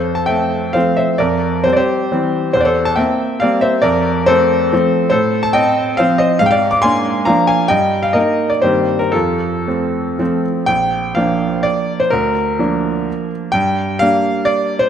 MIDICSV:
0, 0, Header, 1, 2, 480
1, 0, Start_track
1, 0, Key_signature, -1, "major"
1, 0, Tempo, 485830
1, 747, Tempo, 450789
1, 1207, Time_signature, 3, 2, 24, 8
1, 2187, Tempo, 432277
1, 5538, Key_signature, -2, "major"
1, 8907, Tempo, 490196
1, 9867, Tempo, 529101
1, 10827, Tempo, 487013
1, 11307, Tempo, 475436
1, 15147, Tempo, 444115
1, 15583, End_track
2, 0, Start_track
2, 0, Title_t, "Grand piano"
2, 0, Program_c, 0, 0
2, 0, Control_c, 0, 64, 127
2, 0, Note_on_c, 0, 41, 46
2, 0, Note_on_c, 0, 69, 54
2, 0, Note_on_c, 0, 72, 72
2, 123, Note_off_c, 0, 69, 0
2, 141, Note_off_c, 0, 72, 0
2, 149, Note_on_c, 0, 81, 66
2, 257, Note_on_c, 0, 79, 77
2, 263, Note_off_c, 0, 41, 0
2, 268, Note_on_c, 0, 76, 55
2, 272, Note_off_c, 0, 81, 0
2, 282, Note_on_c, 0, 57, 37
2, 287, Note_on_c, 0, 60, 39
2, 712, Note_off_c, 0, 76, 0
2, 713, Note_off_c, 0, 57, 0
2, 716, Note_off_c, 0, 60, 0
2, 722, Note_on_c, 0, 77, 71
2, 733, Note_on_c, 0, 72, 55
2, 740, Note_off_c, 0, 79, 0
2, 746, Note_on_c, 0, 53, 41
2, 747, Note_on_c, 0, 57, 43
2, 752, Note_on_c, 0, 60, 47
2, 759, Control_c, 0, 64, 0
2, 957, Note_off_c, 0, 72, 0
2, 968, Note_off_c, 0, 77, 0
2, 970, Note_on_c, 0, 76, 73
2, 983, Note_on_c, 0, 72, 55
2, 1164, Note_off_c, 0, 53, 0
2, 1165, Note_off_c, 0, 57, 0
2, 1167, Note_off_c, 0, 60, 0
2, 1192, Note_off_c, 0, 72, 0
2, 1201, Note_off_c, 0, 76, 0
2, 1201, Note_on_c, 0, 74, 75
2, 1214, Note_on_c, 0, 70, 55
2, 1223, Note_on_c, 0, 41, 50
2, 1376, Control_c, 0, 64, 127
2, 1663, Note_off_c, 0, 70, 0
2, 1684, Note_on_c, 0, 72, 78
2, 1687, Note_off_c, 0, 41, 0
2, 1690, Note_off_c, 0, 74, 0
2, 1703, Note_on_c, 0, 55, 39
2, 1706, Control_c, 0, 64, 0
2, 1711, Note_on_c, 0, 60, 42
2, 1764, Note_off_c, 0, 72, 0
2, 1782, Note_on_c, 0, 74, 67
2, 1821, Note_on_c, 0, 72, 81
2, 1833, Note_on_c, 0, 67, 62
2, 1850, Note_off_c, 0, 74, 0
2, 2149, Note_off_c, 0, 55, 0
2, 2153, Note_off_c, 0, 60, 0
2, 2197, Note_on_c, 0, 52, 45
2, 2200, Note_on_c, 0, 60, 49
2, 2202, Note_on_c, 0, 55, 45
2, 2617, Note_off_c, 0, 67, 0
2, 2627, Note_off_c, 0, 52, 0
2, 2628, Note_off_c, 0, 60, 0
2, 2629, Note_off_c, 0, 55, 0
2, 2643, Note_off_c, 0, 72, 0
2, 2660, Note_on_c, 0, 72, 78
2, 2681, Note_on_c, 0, 40, 53
2, 2733, Note_off_c, 0, 72, 0
2, 2739, Note_on_c, 0, 74, 66
2, 2787, Note_on_c, 0, 72, 77
2, 2798, Note_on_c, 0, 69, 60
2, 2808, Note_off_c, 0, 74, 0
2, 2847, Control_c, 0, 64, 127
2, 3014, Note_off_c, 0, 69, 0
2, 3015, Note_on_c, 0, 81, 80
2, 3025, Note_off_c, 0, 72, 0
2, 3128, Note_on_c, 0, 79, 73
2, 3139, Note_on_c, 0, 76, 60
2, 3148, Note_on_c, 0, 58, 43
2, 3152, Note_off_c, 0, 81, 0
2, 3154, Note_off_c, 0, 40, 0
2, 3155, Note_on_c, 0, 60, 49
2, 3174, Control_c, 0, 64, 0
2, 3598, Note_off_c, 0, 58, 0
2, 3601, Note_off_c, 0, 60, 0
2, 3603, Note_off_c, 0, 76, 0
2, 3619, Note_on_c, 0, 77, 81
2, 3632, Note_off_c, 0, 79, 0
2, 3641, Note_on_c, 0, 74, 66
2, 3646, Note_on_c, 0, 55, 49
2, 3650, Note_on_c, 0, 58, 49
2, 3657, Note_on_c, 0, 60, 53
2, 3856, Note_on_c, 0, 76, 82
2, 3859, Note_off_c, 0, 74, 0
2, 3864, Note_off_c, 0, 77, 0
2, 3866, Note_on_c, 0, 72, 65
2, 4062, Note_off_c, 0, 55, 0
2, 4064, Note_off_c, 0, 58, 0
2, 4067, Note_off_c, 0, 60, 0
2, 4084, Note_on_c, 0, 74, 88
2, 4085, Note_off_c, 0, 72, 0
2, 4094, Note_on_c, 0, 70, 67
2, 4096, Note_off_c, 0, 76, 0
2, 4105, Note_on_c, 0, 41, 58
2, 4276, Control_c, 0, 64, 127
2, 4557, Note_off_c, 0, 70, 0
2, 4580, Note_on_c, 0, 72, 95
2, 4582, Note_off_c, 0, 41, 0
2, 4586, Note_off_c, 0, 74, 0
2, 4596, Note_on_c, 0, 69, 71
2, 4610, Note_on_c, 0, 57, 47
2, 4610, Note_on_c, 0, 60, 51
2, 5048, Note_off_c, 0, 57, 0
2, 5048, Note_off_c, 0, 60, 0
2, 5094, Note_on_c, 0, 53, 52
2, 5100, Control_c, 0, 64, 0
2, 5100, Note_on_c, 0, 57, 50
2, 5102, Note_on_c, 0, 60, 60
2, 5489, Note_off_c, 0, 72, 0
2, 5492, Note_off_c, 0, 69, 0
2, 5497, Note_off_c, 0, 53, 0
2, 5500, Note_off_c, 0, 57, 0
2, 5501, Note_off_c, 0, 60, 0
2, 5505, Note_on_c, 0, 72, 88
2, 5524, Note_on_c, 0, 69, 68
2, 5535, Note_on_c, 0, 45, 59
2, 5728, Control_c, 0, 64, 127
2, 5858, Note_off_c, 0, 69, 0
2, 5873, Note_off_c, 0, 72, 0
2, 5873, Note_on_c, 0, 81, 87
2, 5988, Note_on_c, 0, 79, 99
2, 6000, Note_off_c, 0, 45, 0
2, 6001, Note_on_c, 0, 75, 74
2, 6007, Note_off_c, 0, 81, 0
2, 6008, Note_on_c, 0, 60, 50
2, 6455, Note_off_c, 0, 60, 0
2, 6461, Note_off_c, 0, 75, 0
2, 6477, Note_on_c, 0, 77, 90
2, 6489, Note_off_c, 0, 79, 0
2, 6496, Note_on_c, 0, 72, 67
2, 6506, Note_on_c, 0, 53, 53
2, 6510, Control_c, 0, 64, 0
2, 6510, Note_on_c, 0, 60, 55
2, 6709, Note_off_c, 0, 72, 0
2, 6711, Note_on_c, 0, 75, 86
2, 6722, Note_off_c, 0, 77, 0
2, 6726, Note_on_c, 0, 72, 65
2, 6921, Note_off_c, 0, 53, 0
2, 6923, Note_off_c, 0, 60, 0
2, 6943, Note_off_c, 0, 72, 0
2, 6944, Note_on_c, 0, 77, 94
2, 6952, Note_off_c, 0, 75, 0
2, 6968, Note_on_c, 0, 44, 59
2, 7019, Note_on_c, 0, 79, 77
2, 7020, Note_off_c, 0, 77, 0
2, 7070, Note_on_c, 0, 77, 86
2, 7085, Note_on_c, 0, 74, 67
2, 7092, Note_off_c, 0, 79, 0
2, 7185, Control_c, 0, 64, 127
2, 7294, Note_off_c, 0, 74, 0
2, 7295, Note_on_c, 0, 86, 88
2, 7302, Note_off_c, 0, 77, 0
2, 7415, Note_on_c, 0, 84, 99
2, 7425, Note_on_c, 0, 80, 77
2, 7429, Note_off_c, 0, 44, 0
2, 7431, Note_off_c, 0, 86, 0
2, 7440, Note_on_c, 0, 58, 44
2, 7444, Note_on_c, 0, 62, 49
2, 7888, Note_off_c, 0, 58, 0
2, 7890, Note_off_c, 0, 62, 0
2, 7890, Note_off_c, 0, 80, 0
2, 7900, Note_on_c, 0, 82, 83
2, 7909, Note_on_c, 0, 77, 69
2, 7920, Note_off_c, 0, 84, 0
2, 7920, Note_on_c, 0, 53, 52
2, 7929, Note_on_c, 0, 58, 50
2, 7934, Note_on_c, 0, 62, 53
2, 7942, Control_c, 0, 64, 0
2, 8141, Note_off_c, 0, 77, 0
2, 8145, Note_on_c, 0, 80, 79
2, 8154, Note_off_c, 0, 82, 0
2, 8159, Note_on_c, 0, 77, 63
2, 8356, Note_off_c, 0, 53, 0
2, 8361, Note_off_c, 0, 58, 0
2, 8363, Note_off_c, 0, 62, 0
2, 8377, Note_on_c, 0, 79, 92
2, 8384, Note_off_c, 0, 77, 0
2, 8388, Note_on_c, 0, 75, 65
2, 8394, Note_off_c, 0, 80, 0
2, 8397, Note_on_c, 0, 43, 58
2, 8593, Control_c, 0, 64, 127
2, 8741, Note_off_c, 0, 75, 0
2, 8757, Note_on_c, 0, 77, 74
2, 8761, Note_off_c, 0, 79, 0
2, 8874, Note_on_c, 0, 75, 84
2, 8884, Note_on_c, 0, 70, 63
2, 8889, Note_off_c, 0, 43, 0
2, 8893, Note_on_c, 0, 58, 42
2, 8900, Note_off_c, 0, 77, 0
2, 8902, Note_on_c, 0, 63, 45
2, 8916, Control_c, 0, 64, 0
2, 9227, Note_off_c, 0, 70, 0
2, 9236, Note_on_c, 0, 74, 69
2, 9248, Note_off_c, 0, 75, 0
2, 9334, Note_off_c, 0, 58, 0
2, 9338, Note_off_c, 0, 63, 0
2, 9353, Note_on_c, 0, 72, 72
2, 9367, Note_off_c, 0, 74, 0
2, 9368, Note_on_c, 0, 67, 55
2, 9376, Note_on_c, 0, 43, 49
2, 9378, Note_on_c, 0, 51, 37
2, 9384, Note_on_c, 0, 58, 36
2, 9393, Note_on_c, 0, 60, 35
2, 9553, Control_c, 0, 64, 127
2, 9711, Note_off_c, 0, 67, 0
2, 9721, Note_on_c, 0, 70, 65
2, 9729, Note_off_c, 0, 72, 0
2, 9829, Note_off_c, 0, 51, 0
2, 9831, Note_off_c, 0, 58, 0
2, 9836, Note_off_c, 0, 60, 0
2, 9844, Note_on_c, 0, 69, 71
2, 9852, Note_off_c, 0, 43, 0
2, 9858, Note_off_c, 0, 70, 0
2, 9858, Note_on_c, 0, 65, 50
2, 9869, Note_on_c, 0, 41, 46
2, 9877, Control_c, 0, 64, 0
2, 10067, Control_c, 0, 64, 127
2, 10343, Note_off_c, 0, 41, 0
2, 10350, Note_on_c, 0, 57, 36
2, 10355, Note_on_c, 0, 60, 41
2, 10787, Note_off_c, 0, 57, 0
2, 10790, Note_off_c, 0, 60, 0
2, 10819, Note_on_c, 0, 53, 41
2, 10826, Note_on_c, 0, 57, 41
2, 10827, Note_on_c, 0, 60, 47
2, 10842, Control_c, 0, 64, 0
2, 11025, Note_off_c, 0, 65, 0
2, 11058, Note_off_c, 0, 69, 0
2, 11264, Note_off_c, 0, 53, 0
2, 11268, Note_off_c, 0, 57, 0
2, 11268, Note_off_c, 0, 60, 0
2, 11285, Note_on_c, 0, 79, 97
2, 11304, Note_on_c, 0, 34, 52
2, 11497, Control_c, 0, 64, 127
2, 11773, Note_on_c, 0, 77, 74
2, 11779, Note_off_c, 0, 34, 0
2, 11784, Note_off_c, 0, 79, 0
2, 11790, Note_on_c, 0, 53, 42
2, 11792, Note_on_c, 0, 58, 43
2, 11802, Note_on_c, 0, 62, 46
2, 12259, Note_on_c, 0, 74, 84
2, 12274, Note_off_c, 0, 77, 0
2, 12294, Control_c, 0, 64, 0
2, 12629, Note_off_c, 0, 74, 0
2, 12631, Note_on_c, 0, 72, 75
2, 12714, Note_off_c, 0, 53, 0
2, 12715, Note_off_c, 0, 58, 0
2, 12720, Note_off_c, 0, 62, 0
2, 12739, Note_on_c, 0, 70, 79
2, 12752, Note_off_c, 0, 72, 0
2, 12761, Note_on_c, 0, 38, 58
2, 12948, Control_c, 0, 64, 127
2, 13219, Note_off_c, 0, 38, 0
2, 13232, Note_on_c, 0, 53, 43
2, 13232, Note_on_c, 0, 58, 43
2, 13238, Note_on_c, 0, 62, 49
2, 13729, Control_c, 0, 64, 0
2, 13947, Note_off_c, 0, 70, 0
2, 14152, Note_off_c, 0, 53, 0
2, 14152, Note_off_c, 0, 58, 0
2, 14155, Note_off_c, 0, 62, 0
2, 14166, Note_on_c, 0, 79, 100
2, 14185, Note_on_c, 0, 43, 58
2, 14381, Control_c, 0, 64, 127
2, 14646, Note_on_c, 0, 77, 97
2, 14654, Note_off_c, 0, 43, 0
2, 14659, Note_off_c, 0, 79, 0
2, 14664, Note_on_c, 0, 55, 48
2, 14670, Note_on_c, 0, 62, 50
2, 14672, Note_on_c, 0, 58, 47
2, 14686, Control_c, 0, 64, 0
2, 15109, Note_on_c, 0, 74, 91
2, 15135, Note_off_c, 0, 77, 0
2, 15475, Note_on_c, 0, 72, 85
2, 15488, Note_off_c, 0, 74, 0
2, 15581, Note_off_c, 0, 55, 0
2, 15583, Note_off_c, 0, 58, 0
2, 15583, Note_off_c, 0, 62, 0
2, 15583, Note_off_c, 0, 72, 0
2, 15583, End_track
0, 0, End_of_file